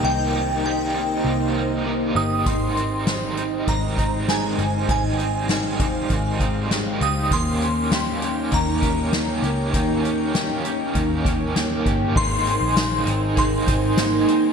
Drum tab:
CC |--------|--------|--------|--------|
HH |--------|xxxxxxxx|xxxxxxxx|xxxxxxxx|
TB |--------|--------|--------|--------|
SD |--------|--o---o-|--o---o-|--o---o-|
BD |--------|o---oo--|o--ooo--|o---oo--|

CC |--------|x-------|
HH |xxxxxxxx|-xxxxxxx|
TB |--------|--x---x-|
SD |--o---o-|--o---o-|
BD |o---oo-o|o---oo--|